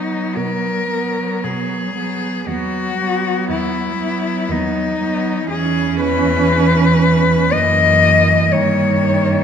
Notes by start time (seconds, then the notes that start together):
Already playing: B2 F#3 B3 D#4
0.36 B2 A#4
0.90 F#3 B3
1.43 B2 G#4
1.95 F#3 B3
2.47 D#2 F#3 B3 F#4
2.98 F#3 B3
3.49 D#2 E4
3.98 F#3 B3
4.49 D#2 D#4
4.99 F#3 B3
5.49 E2 E3 C#4 G#4
6.01 B4
7.50 F#2 E3 A#3 D#5
8.52 G2 D#3 A#3 C#5